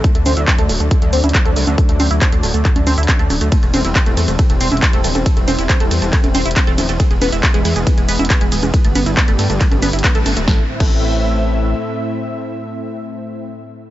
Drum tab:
CC |--------------------------------|--------------------------------|--------------------------------|--------------------------------|
RD |--------------------------------|--------------------------------|x---x---x---x---x---x---x---x---|x---x---x---x---x---x---x---x---|
HH |x-x-o-x-x-x-o-x-x-x-o-xxx-x-o-x-|x-x-o-x-x-x-o-x-x-x-o-xxx-x-o-x-|x-x-o-x-x-x-o-x-x-x-o-xxx-x-o-x-|x-x-o-x-x-x-o-x-x-x-o-xxx-x-o-x-|
SH |x---x-x-x---x-x-x---x-x-x---x-x-|x---x-x-x---x-x-x---x-x-x---x-x-|x---x-x-x---x-x-x---x-x-x---x-x-|x---x-x-x---x-x-x---x-x-x---x-x-|
CP |--------x---------------x-------|--------x-------x-------x-------|--------x---------------x-------|--------x-------x-------x-------|
SD |--------------------------------|--------------------------------|--------------------------------|--------------------------------|
CG |----o-----------------o-------o-|----o-------------o-o-------o---|----o-----------------o-------o-|----o-------------o-o-------o---|
BD |o-------o-------o-------o-------|o-------o-------o-------o-------|o-------o-------o-------o-------|o-------o-------o-------o-------|

CC |--------------------------------|--------------------------------|------x-------------------------|--------------------------------|
RD |x---x---x---x---x---x---x---x---|x---x---x---x---x---x---x---x---|--------------------------------|--------------------------------|
HH |x-x-o-x-x-x-o-x-x-x-o-xxx-x-o-x-|x-x-o-x-x-x-o-x-x-x-o-xxx-x-o-x-|--------------------------------|--------------------------------|
SH |x---x-x-x---x-x-x---x-x-x---x-x-|x---x-x-x---x-x-x---x-x-x---x-x-|--------------------------------|--------------------------------|
CP |--------x---------------x-------|--------x-------x-------x-------|--------------------------------|--------------------------------|
SD |--------------------------------|--------------------------------|o-------------------------------|--------------------------------|
CG |----o-----------------o-------o-|----o-------------o-o-------o---|--------------------------------|--------------------------------|
BD |o-------o-------o-------o-------|o-------o-------o-------o-------|o-----o-------------------------|--------------------------------|